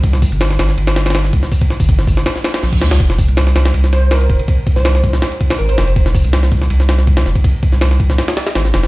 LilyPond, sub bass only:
\new Staff \with { instrumentName = "Sub bass" } { \clef bass \time 4/4 \key f \minor \tempo 4 = 162 c,8. g,,8. g,,8 g,,4. c,16 r16 | r8. g,,8. g,,8 r4 bes,,8 ees,16 c,16 | f,,8. c,8. c,8 c,4. f,,16 r16 | r8. c,8. c,8 r4 aes,,8 f,,8 |
f,,8. c,8. c,8 c,4. f,,16 r16 | r8. c,8. c,8 r4 aes,,8 f,,8 | }